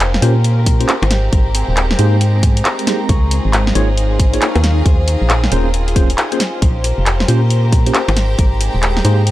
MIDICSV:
0, 0, Header, 1, 7, 480
1, 0, Start_track
1, 0, Tempo, 441176
1, 1444, Time_signature, 4, 2, 24, 8
1, 10131, End_track
2, 0, Start_track
2, 0, Title_t, "Ambient pad"
2, 0, Program_c, 0, 92
2, 0, Note_on_c, 0, 72, 79
2, 0, Note_on_c, 0, 77, 76
2, 110, Note_on_c, 0, 79, 74
2, 209, Note_off_c, 0, 77, 0
2, 284, Note_on_c, 0, 82, 74
2, 1206, Note_on_c, 0, 60, 85
2, 1447, Note_on_c, 0, 56, 88
2, 2092, Note_off_c, 0, 72, 0
2, 3365, Note_off_c, 0, 60, 0
2, 3370, Note_on_c, 0, 63, 86
2, 3661, Note_on_c, 0, 77, 81
2, 4048, Note_off_c, 0, 79, 0
2, 4049, Note_off_c, 0, 56, 0
2, 5294, Note_on_c, 0, 72, 80
2, 5697, Note_on_c, 0, 80, 71
2, 5931, Note_off_c, 0, 82, 0
2, 5936, Note_off_c, 0, 63, 0
2, 7206, Note_off_c, 0, 80, 0
2, 7382, Note_on_c, 0, 82, 93
2, 7432, Note_on_c, 0, 79, 84
2, 7890, Note_off_c, 0, 77, 0
2, 8884, Note_on_c, 0, 56, 91
2, 10131, Note_off_c, 0, 56, 0
2, 10131, Note_off_c, 0, 72, 0
2, 10131, Note_off_c, 0, 79, 0
2, 10131, Note_off_c, 0, 82, 0
2, 10131, End_track
3, 0, Start_track
3, 0, Title_t, "Harp"
3, 0, Program_c, 1, 46
3, 0, Note_on_c, 1, 63, 80
3, 0, Note_on_c, 1, 65, 82
3, 0, Note_on_c, 1, 67, 74
3, 0, Note_on_c, 1, 70, 89
3, 0, Note_on_c, 1, 72, 101
3, 236, Note_off_c, 1, 67, 0
3, 241, Note_on_c, 1, 67, 74
3, 245, Note_off_c, 1, 70, 0
3, 250, Note_on_c, 1, 70, 99
3, 625, Note_off_c, 1, 67, 0
3, 630, Note_on_c, 1, 67, 81
3, 633, Note_off_c, 1, 70, 0
3, 638, Note_on_c, 1, 70, 98
3, 962, Note_off_c, 1, 72, 0
3, 963, Note_on_c, 1, 68, 75
3, 967, Note_on_c, 1, 72, 95
3, 1028, Note_off_c, 1, 67, 0
3, 1440, Note_on_c, 1, 67, 80
3, 1443, Note_off_c, 1, 70, 0
3, 1447, Note_on_c, 1, 70, 103
3, 1461, Note_off_c, 1, 65, 0
3, 1505, Note_off_c, 1, 68, 0
3, 1680, Note_on_c, 1, 60, 75
3, 1685, Note_on_c, 1, 68, 94
3, 1750, Note_off_c, 1, 67, 0
3, 2156, Note_off_c, 1, 60, 0
3, 2160, Note_off_c, 1, 68, 0
3, 2161, Note_on_c, 1, 60, 75
3, 2164, Note_on_c, 1, 68, 99
3, 2463, Note_off_c, 1, 63, 0
3, 2549, Note_off_c, 1, 60, 0
3, 2554, Note_on_c, 1, 60, 79
3, 2556, Note_off_c, 1, 68, 0
3, 2561, Note_on_c, 1, 68, 98
3, 2884, Note_on_c, 1, 67, 78
3, 2887, Note_off_c, 1, 70, 0
3, 2891, Note_on_c, 1, 70, 94
3, 2949, Note_off_c, 1, 68, 0
3, 3120, Note_off_c, 1, 72, 0
3, 3359, Note_off_c, 1, 70, 0
3, 3364, Note_on_c, 1, 70, 82
3, 3369, Note_on_c, 1, 73, 101
3, 3434, Note_off_c, 1, 60, 0
3, 3601, Note_on_c, 1, 68, 78
3, 3608, Note_on_c, 1, 72, 88
3, 3667, Note_off_c, 1, 67, 0
3, 3673, Note_off_c, 1, 73, 0
3, 4075, Note_off_c, 1, 68, 0
3, 4079, Note_on_c, 1, 68, 80
3, 4082, Note_off_c, 1, 72, 0
3, 4086, Note_on_c, 1, 72, 98
3, 4468, Note_off_c, 1, 68, 0
3, 4473, Note_on_c, 1, 68, 79
3, 4476, Note_off_c, 1, 72, 0
3, 4480, Note_on_c, 1, 72, 96
3, 4798, Note_off_c, 1, 70, 0
3, 4802, Note_on_c, 1, 70, 79
3, 4808, Note_on_c, 1, 73, 90
3, 4873, Note_off_c, 1, 72, 0
3, 5275, Note_off_c, 1, 68, 0
3, 5280, Note_on_c, 1, 68, 79
3, 5286, Note_on_c, 1, 72, 104
3, 5351, Note_off_c, 1, 73, 0
3, 5518, Note_on_c, 1, 61, 75
3, 5519, Note_off_c, 1, 70, 0
3, 5524, Note_on_c, 1, 70, 94
3, 5584, Note_off_c, 1, 72, 0
3, 5995, Note_off_c, 1, 61, 0
3, 5997, Note_off_c, 1, 70, 0
3, 5999, Note_on_c, 1, 61, 78
3, 6001, Note_on_c, 1, 70, 98
3, 6392, Note_on_c, 1, 65, 78
3, 6396, Note_off_c, 1, 68, 0
3, 6401, Note_on_c, 1, 68, 94
3, 6719, Note_on_c, 1, 63, 75
3, 6724, Note_on_c, 1, 67, 88
3, 6789, Note_off_c, 1, 68, 0
3, 7195, Note_off_c, 1, 63, 0
3, 7200, Note_on_c, 1, 63, 79
3, 7205, Note_on_c, 1, 72, 97
3, 7270, Note_off_c, 1, 61, 0
3, 7435, Note_off_c, 1, 67, 0
3, 7439, Note_off_c, 1, 70, 0
3, 7440, Note_on_c, 1, 67, 76
3, 7443, Note_on_c, 1, 70, 92
3, 7917, Note_off_c, 1, 67, 0
3, 7920, Note_off_c, 1, 70, 0
3, 7921, Note_on_c, 1, 67, 78
3, 7924, Note_on_c, 1, 70, 97
3, 8307, Note_off_c, 1, 67, 0
3, 8311, Note_on_c, 1, 67, 77
3, 8315, Note_off_c, 1, 70, 0
3, 8319, Note_on_c, 1, 70, 102
3, 8643, Note_off_c, 1, 72, 0
3, 8643, Note_on_c, 1, 68, 75
3, 8648, Note_on_c, 1, 72, 96
3, 8708, Note_off_c, 1, 67, 0
3, 9123, Note_on_c, 1, 67, 78
3, 9125, Note_off_c, 1, 70, 0
3, 9129, Note_on_c, 1, 70, 108
3, 9137, Note_off_c, 1, 65, 0
3, 9188, Note_off_c, 1, 68, 0
3, 9361, Note_on_c, 1, 60, 76
3, 9368, Note_on_c, 1, 68, 93
3, 9433, Note_off_c, 1, 67, 0
3, 9840, Note_off_c, 1, 60, 0
3, 9844, Note_on_c, 1, 60, 82
3, 9845, Note_off_c, 1, 68, 0
3, 9849, Note_on_c, 1, 68, 96
3, 10131, Note_off_c, 1, 60, 0
3, 10131, Note_off_c, 1, 63, 0
3, 10131, Note_off_c, 1, 68, 0
3, 10131, Note_off_c, 1, 70, 0
3, 10131, Note_off_c, 1, 72, 0
3, 10131, End_track
4, 0, Start_track
4, 0, Title_t, "Tine electric piano"
4, 0, Program_c, 2, 4
4, 243, Note_on_c, 2, 58, 100
4, 243, Note_on_c, 2, 61, 95
4, 243, Note_on_c, 2, 65, 95
4, 243, Note_on_c, 2, 67, 91
4, 243, Note_on_c, 2, 72, 111
4, 370, Note_off_c, 2, 58, 0
4, 370, Note_off_c, 2, 61, 0
4, 370, Note_off_c, 2, 65, 0
4, 370, Note_off_c, 2, 67, 0
4, 370, Note_off_c, 2, 72, 0
4, 874, Note_on_c, 2, 58, 77
4, 874, Note_on_c, 2, 61, 72
4, 874, Note_on_c, 2, 65, 71
4, 874, Note_on_c, 2, 67, 71
4, 875, Note_on_c, 2, 72, 86
4, 1013, Note_off_c, 2, 58, 0
4, 1013, Note_off_c, 2, 61, 0
4, 1013, Note_off_c, 2, 65, 0
4, 1013, Note_off_c, 2, 67, 0
4, 1013, Note_off_c, 2, 72, 0
4, 2163, Note_on_c, 2, 58, 104
4, 2163, Note_on_c, 2, 63, 92
4, 2163, Note_on_c, 2, 67, 92
4, 2163, Note_on_c, 2, 72, 114
4, 2164, Note_on_c, 2, 68, 92
4, 2344, Note_off_c, 2, 72, 0
4, 2345, Note_off_c, 2, 58, 0
4, 2345, Note_off_c, 2, 63, 0
4, 2345, Note_off_c, 2, 67, 0
4, 2345, Note_off_c, 2, 68, 0
4, 3125, Note_on_c, 2, 58, 80
4, 3125, Note_on_c, 2, 63, 74
4, 3125, Note_on_c, 2, 68, 71
4, 3125, Note_on_c, 2, 72, 90
4, 3126, Note_on_c, 2, 67, 76
4, 3251, Note_off_c, 2, 58, 0
4, 3251, Note_off_c, 2, 63, 0
4, 3251, Note_off_c, 2, 67, 0
4, 3251, Note_off_c, 2, 68, 0
4, 3251, Note_off_c, 2, 72, 0
4, 4084, Note_on_c, 2, 63, 91
4, 4084, Note_on_c, 2, 65, 94
4, 4084, Note_on_c, 2, 68, 94
4, 4084, Note_on_c, 2, 73, 114
4, 4085, Note_on_c, 2, 58, 104
4, 4210, Note_off_c, 2, 63, 0
4, 4210, Note_off_c, 2, 65, 0
4, 4210, Note_off_c, 2, 68, 0
4, 4210, Note_off_c, 2, 73, 0
4, 4211, Note_off_c, 2, 58, 0
4, 4716, Note_on_c, 2, 58, 77
4, 4716, Note_on_c, 2, 63, 73
4, 4716, Note_on_c, 2, 65, 74
4, 4717, Note_on_c, 2, 68, 70
4, 4717, Note_on_c, 2, 73, 88
4, 4854, Note_off_c, 2, 58, 0
4, 4854, Note_off_c, 2, 63, 0
4, 4854, Note_off_c, 2, 65, 0
4, 4854, Note_off_c, 2, 68, 0
4, 4855, Note_off_c, 2, 73, 0
4, 6004, Note_on_c, 2, 72, 114
4, 6005, Note_on_c, 2, 58, 102
4, 6005, Note_on_c, 2, 61, 91
4, 6005, Note_on_c, 2, 65, 92
4, 6005, Note_on_c, 2, 68, 93
4, 6185, Note_off_c, 2, 58, 0
4, 6185, Note_off_c, 2, 61, 0
4, 6185, Note_off_c, 2, 65, 0
4, 6185, Note_off_c, 2, 68, 0
4, 6185, Note_off_c, 2, 72, 0
4, 6484, Note_on_c, 2, 72, 116
4, 6485, Note_on_c, 2, 58, 94
4, 6485, Note_on_c, 2, 61, 87
4, 6485, Note_on_c, 2, 65, 90
4, 6485, Note_on_c, 2, 68, 90
4, 6610, Note_off_c, 2, 72, 0
4, 6611, Note_off_c, 2, 58, 0
4, 6611, Note_off_c, 2, 61, 0
4, 6611, Note_off_c, 2, 65, 0
4, 6611, Note_off_c, 2, 68, 0
4, 6877, Note_on_c, 2, 58, 94
4, 6877, Note_on_c, 2, 61, 86
4, 6878, Note_on_c, 2, 65, 90
4, 6878, Note_on_c, 2, 68, 92
4, 6878, Note_on_c, 2, 72, 109
4, 6950, Note_off_c, 2, 58, 0
4, 6950, Note_off_c, 2, 61, 0
4, 6950, Note_off_c, 2, 65, 0
4, 6950, Note_off_c, 2, 68, 0
4, 6950, Note_off_c, 2, 72, 0
4, 7926, Note_on_c, 2, 58, 96
4, 7926, Note_on_c, 2, 61, 92
4, 7926, Note_on_c, 2, 65, 87
4, 7926, Note_on_c, 2, 67, 92
4, 7926, Note_on_c, 2, 72, 109
4, 8051, Note_off_c, 2, 58, 0
4, 8051, Note_off_c, 2, 61, 0
4, 8051, Note_off_c, 2, 65, 0
4, 8051, Note_off_c, 2, 67, 0
4, 8051, Note_off_c, 2, 72, 0
4, 8557, Note_on_c, 2, 58, 79
4, 8557, Note_on_c, 2, 61, 73
4, 8557, Note_on_c, 2, 65, 71
4, 8557, Note_on_c, 2, 67, 72
4, 8557, Note_on_c, 2, 72, 82
4, 8695, Note_off_c, 2, 58, 0
4, 8695, Note_off_c, 2, 61, 0
4, 8695, Note_off_c, 2, 65, 0
4, 8695, Note_off_c, 2, 67, 0
4, 8695, Note_off_c, 2, 72, 0
4, 9844, Note_on_c, 2, 63, 91
4, 9844, Note_on_c, 2, 68, 95
4, 9844, Note_on_c, 2, 72, 113
4, 9845, Note_on_c, 2, 58, 104
4, 9845, Note_on_c, 2, 67, 95
4, 10025, Note_off_c, 2, 58, 0
4, 10025, Note_off_c, 2, 63, 0
4, 10025, Note_off_c, 2, 67, 0
4, 10025, Note_off_c, 2, 68, 0
4, 10025, Note_off_c, 2, 72, 0
4, 10131, End_track
5, 0, Start_track
5, 0, Title_t, "Violin section"
5, 0, Program_c, 3, 48
5, 0, Note_on_c, 3, 60, 87
5, 0, Note_on_c, 3, 61, 73
5, 0, Note_on_c, 3, 65, 73
5, 0, Note_on_c, 3, 67, 90
5, 1165, Note_off_c, 3, 65, 0
5, 1166, Note_off_c, 3, 61, 0
5, 1202, Note_on_c, 3, 63, 72
5, 1203, Note_on_c, 3, 58, 83
5, 3324, Note_off_c, 3, 60, 0
5, 3324, Note_off_c, 3, 67, 0
5, 3342, Note_off_c, 3, 58, 0
5, 3363, Note_on_c, 3, 58, 85
5, 3363, Note_on_c, 3, 68, 98
5, 3364, Note_on_c, 3, 65, 80
5, 5005, Note_off_c, 3, 63, 0
5, 5027, Note_off_c, 3, 58, 0
5, 5041, Note_on_c, 3, 60, 84
5, 5042, Note_on_c, 3, 61, 74
5, 7165, Note_off_c, 3, 68, 0
5, 7181, Note_off_c, 3, 60, 0
5, 7202, Note_on_c, 3, 60, 80
5, 7204, Note_on_c, 3, 67, 96
5, 8840, Note_off_c, 3, 65, 0
5, 8844, Note_off_c, 3, 61, 0
5, 8884, Note_on_c, 3, 63, 72
5, 8885, Note_on_c, 3, 58, 82
5, 10131, Note_off_c, 3, 58, 0
5, 10131, Note_off_c, 3, 60, 0
5, 10131, Note_off_c, 3, 63, 0
5, 10131, Note_off_c, 3, 67, 0
5, 10131, End_track
6, 0, Start_track
6, 0, Title_t, "FM bass"
6, 0, Program_c, 4, 39
6, 0, Note_on_c, 4, 29, 82
6, 210, Note_off_c, 4, 29, 0
6, 241, Note_on_c, 4, 46, 100
6, 930, Note_off_c, 4, 46, 0
6, 1114, Note_on_c, 4, 32, 98
6, 1410, Note_off_c, 4, 32, 0
6, 1442, Note_on_c, 4, 32, 97
6, 1778, Note_off_c, 4, 32, 0
6, 1835, Note_on_c, 4, 27, 81
6, 2131, Note_off_c, 4, 27, 0
6, 2165, Note_on_c, 4, 44, 100
6, 2852, Note_off_c, 4, 44, 0
6, 3364, Note_on_c, 4, 37, 101
6, 3700, Note_off_c, 4, 37, 0
6, 3757, Note_on_c, 4, 32, 83
6, 4052, Note_off_c, 4, 32, 0
6, 4086, Note_on_c, 4, 32, 97
6, 4772, Note_off_c, 4, 32, 0
6, 4958, Note_on_c, 4, 39, 100
6, 5252, Note_off_c, 4, 39, 0
6, 5284, Note_on_c, 4, 39, 102
6, 5619, Note_off_c, 4, 39, 0
6, 5676, Note_on_c, 4, 34, 84
6, 5971, Note_off_c, 4, 34, 0
6, 6005, Note_on_c, 4, 27, 96
6, 6692, Note_off_c, 4, 27, 0
6, 7205, Note_on_c, 4, 34, 96
6, 7540, Note_off_c, 4, 34, 0
6, 7597, Note_on_c, 4, 29, 79
6, 7891, Note_off_c, 4, 29, 0
6, 7925, Note_on_c, 4, 46, 97
6, 8612, Note_off_c, 4, 46, 0
6, 8796, Note_on_c, 4, 32, 96
6, 9091, Note_off_c, 4, 32, 0
6, 9124, Note_on_c, 4, 32, 103
6, 9459, Note_off_c, 4, 32, 0
6, 9516, Note_on_c, 4, 27, 80
6, 9811, Note_off_c, 4, 27, 0
6, 9844, Note_on_c, 4, 44, 99
6, 10131, Note_off_c, 4, 44, 0
6, 10131, End_track
7, 0, Start_track
7, 0, Title_t, "Drums"
7, 4, Note_on_c, 9, 39, 125
7, 4, Note_on_c, 9, 42, 68
7, 112, Note_off_c, 9, 39, 0
7, 112, Note_off_c, 9, 42, 0
7, 156, Note_on_c, 9, 38, 71
7, 243, Note_on_c, 9, 46, 107
7, 264, Note_off_c, 9, 38, 0
7, 352, Note_off_c, 9, 46, 0
7, 484, Note_on_c, 9, 42, 65
7, 593, Note_off_c, 9, 42, 0
7, 723, Note_on_c, 9, 36, 112
7, 723, Note_on_c, 9, 46, 116
7, 832, Note_off_c, 9, 36, 0
7, 832, Note_off_c, 9, 46, 0
7, 876, Note_on_c, 9, 42, 63
7, 964, Note_off_c, 9, 42, 0
7, 964, Note_on_c, 9, 39, 117
7, 964, Note_on_c, 9, 42, 63
7, 1073, Note_off_c, 9, 39, 0
7, 1073, Note_off_c, 9, 42, 0
7, 1116, Note_on_c, 9, 42, 37
7, 1116, Note_on_c, 9, 60, 79
7, 1204, Note_on_c, 9, 38, 75
7, 1204, Note_on_c, 9, 46, 112
7, 1225, Note_off_c, 9, 42, 0
7, 1225, Note_off_c, 9, 60, 0
7, 1312, Note_off_c, 9, 38, 0
7, 1312, Note_off_c, 9, 46, 0
7, 1443, Note_on_c, 9, 36, 120
7, 1443, Note_on_c, 9, 42, 65
7, 1552, Note_off_c, 9, 36, 0
7, 1552, Note_off_c, 9, 42, 0
7, 1683, Note_on_c, 9, 46, 111
7, 1791, Note_off_c, 9, 46, 0
7, 1923, Note_on_c, 9, 39, 124
7, 1923, Note_on_c, 9, 42, 68
7, 2032, Note_off_c, 9, 39, 0
7, 2032, Note_off_c, 9, 42, 0
7, 2075, Note_on_c, 9, 38, 72
7, 2162, Note_on_c, 9, 46, 99
7, 2183, Note_off_c, 9, 38, 0
7, 2271, Note_off_c, 9, 46, 0
7, 2404, Note_on_c, 9, 42, 67
7, 2512, Note_off_c, 9, 42, 0
7, 2644, Note_on_c, 9, 36, 112
7, 2644, Note_on_c, 9, 46, 111
7, 2752, Note_off_c, 9, 36, 0
7, 2753, Note_off_c, 9, 46, 0
7, 2796, Note_on_c, 9, 42, 60
7, 2884, Note_off_c, 9, 42, 0
7, 2884, Note_on_c, 9, 39, 117
7, 2884, Note_on_c, 9, 42, 62
7, 2993, Note_off_c, 9, 39, 0
7, 2993, Note_off_c, 9, 42, 0
7, 3036, Note_on_c, 9, 42, 35
7, 3124, Note_on_c, 9, 38, 71
7, 3124, Note_on_c, 9, 46, 110
7, 3145, Note_off_c, 9, 42, 0
7, 3233, Note_off_c, 9, 38, 0
7, 3233, Note_off_c, 9, 46, 0
7, 3364, Note_on_c, 9, 36, 124
7, 3364, Note_on_c, 9, 42, 65
7, 3473, Note_off_c, 9, 36, 0
7, 3473, Note_off_c, 9, 42, 0
7, 3604, Note_on_c, 9, 46, 105
7, 3713, Note_off_c, 9, 46, 0
7, 3845, Note_on_c, 9, 39, 127
7, 3845, Note_on_c, 9, 42, 68
7, 3954, Note_off_c, 9, 39, 0
7, 3954, Note_off_c, 9, 42, 0
7, 3996, Note_on_c, 9, 38, 73
7, 4084, Note_on_c, 9, 46, 100
7, 4105, Note_off_c, 9, 38, 0
7, 4193, Note_off_c, 9, 46, 0
7, 4325, Note_on_c, 9, 42, 62
7, 4434, Note_off_c, 9, 42, 0
7, 4564, Note_on_c, 9, 36, 112
7, 4565, Note_on_c, 9, 46, 108
7, 4673, Note_off_c, 9, 36, 0
7, 4674, Note_off_c, 9, 46, 0
7, 4717, Note_on_c, 9, 42, 57
7, 4805, Note_off_c, 9, 42, 0
7, 4805, Note_on_c, 9, 39, 125
7, 4805, Note_on_c, 9, 42, 64
7, 4914, Note_off_c, 9, 39, 0
7, 4914, Note_off_c, 9, 42, 0
7, 4956, Note_on_c, 9, 42, 36
7, 4956, Note_on_c, 9, 60, 80
7, 5045, Note_on_c, 9, 38, 68
7, 5045, Note_on_c, 9, 46, 103
7, 5065, Note_off_c, 9, 42, 0
7, 5065, Note_off_c, 9, 60, 0
7, 5154, Note_off_c, 9, 38, 0
7, 5154, Note_off_c, 9, 46, 0
7, 5283, Note_on_c, 9, 36, 127
7, 5284, Note_on_c, 9, 42, 67
7, 5392, Note_off_c, 9, 36, 0
7, 5393, Note_off_c, 9, 42, 0
7, 5523, Note_on_c, 9, 46, 101
7, 5632, Note_off_c, 9, 46, 0
7, 5763, Note_on_c, 9, 39, 127
7, 5763, Note_on_c, 9, 42, 68
7, 5872, Note_off_c, 9, 39, 0
7, 5872, Note_off_c, 9, 42, 0
7, 5915, Note_on_c, 9, 38, 72
7, 6002, Note_on_c, 9, 46, 98
7, 6024, Note_off_c, 9, 38, 0
7, 6111, Note_off_c, 9, 46, 0
7, 6243, Note_on_c, 9, 42, 63
7, 6352, Note_off_c, 9, 42, 0
7, 6396, Note_on_c, 9, 46, 57
7, 6483, Note_on_c, 9, 36, 115
7, 6485, Note_off_c, 9, 46, 0
7, 6485, Note_on_c, 9, 46, 100
7, 6592, Note_off_c, 9, 36, 0
7, 6593, Note_off_c, 9, 46, 0
7, 6636, Note_on_c, 9, 42, 60
7, 6724, Note_off_c, 9, 42, 0
7, 6724, Note_on_c, 9, 39, 118
7, 6724, Note_on_c, 9, 42, 62
7, 6833, Note_off_c, 9, 39, 0
7, 6833, Note_off_c, 9, 42, 0
7, 6876, Note_on_c, 9, 42, 37
7, 6964, Note_on_c, 9, 38, 69
7, 6964, Note_on_c, 9, 46, 99
7, 6984, Note_off_c, 9, 42, 0
7, 7072, Note_off_c, 9, 38, 0
7, 7072, Note_off_c, 9, 46, 0
7, 7204, Note_on_c, 9, 36, 119
7, 7204, Note_on_c, 9, 42, 69
7, 7313, Note_off_c, 9, 36, 0
7, 7313, Note_off_c, 9, 42, 0
7, 7444, Note_on_c, 9, 46, 105
7, 7553, Note_off_c, 9, 46, 0
7, 7686, Note_on_c, 9, 39, 127
7, 7686, Note_on_c, 9, 42, 71
7, 7794, Note_off_c, 9, 39, 0
7, 7794, Note_off_c, 9, 42, 0
7, 7837, Note_on_c, 9, 38, 69
7, 7925, Note_on_c, 9, 46, 99
7, 7946, Note_off_c, 9, 38, 0
7, 8034, Note_off_c, 9, 46, 0
7, 8165, Note_on_c, 9, 42, 65
7, 8274, Note_off_c, 9, 42, 0
7, 8404, Note_on_c, 9, 36, 113
7, 8405, Note_on_c, 9, 46, 101
7, 8513, Note_off_c, 9, 36, 0
7, 8514, Note_off_c, 9, 46, 0
7, 8557, Note_on_c, 9, 42, 60
7, 8644, Note_off_c, 9, 42, 0
7, 8644, Note_on_c, 9, 39, 116
7, 8644, Note_on_c, 9, 42, 63
7, 8753, Note_off_c, 9, 39, 0
7, 8753, Note_off_c, 9, 42, 0
7, 8797, Note_on_c, 9, 42, 40
7, 8797, Note_on_c, 9, 60, 89
7, 8884, Note_on_c, 9, 38, 69
7, 8884, Note_on_c, 9, 46, 101
7, 8906, Note_off_c, 9, 42, 0
7, 8906, Note_off_c, 9, 60, 0
7, 8993, Note_off_c, 9, 38, 0
7, 8993, Note_off_c, 9, 46, 0
7, 9124, Note_on_c, 9, 36, 114
7, 9124, Note_on_c, 9, 42, 71
7, 9232, Note_off_c, 9, 36, 0
7, 9233, Note_off_c, 9, 42, 0
7, 9364, Note_on_c, 9, 46, 113
7, 9472, Note_off_c, 9, 46, 0
7, 9604, Note_on_c, 9, 39, 117
7, 9604, Note_on_c, 9, 42, 73
7, 9713, Note_off_c, 9, 39, 0
7, 9713, Note_off_c, 9, 42, 0
7, 9756, Note_on_c, 9, 38, 65
7, 9843, Note_on_c, 9, 46, 99
7, 9865, Note_off_c, 9, 38, 0
7, 9952, Note_off_c, 9, 46, 0
7, 10084, Note_on_c, 9, 42, 67
7, 10131, Note_off_c, 9, 42, 0
7, 10131, End_track
0, 0, End_of_file